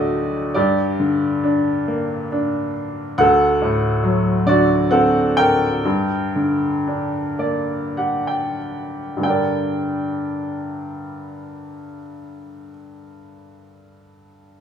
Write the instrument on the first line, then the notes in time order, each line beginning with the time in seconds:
upright piano
Already playing: D2 A2 D3 A3 F#4 G4 D5 D#5
0.54 G2 G4 D5
1.00 D3
1.44 D4
1.88 A#3
2.32 D4
3.18 D2 A4 F#5
3.62 A2
4.03 F#3
4.46 D3 F#4 D5
4.91 C4 A4 F#5
5.37 A#4 G5
5.85 G2
6.36 D3
6.87 D4
7.39 A#3 D5
7.97 G4 F#5
8.27 G5
9.17 G2 D3
9.22 G3 D4 G5
9.28 A#4 D5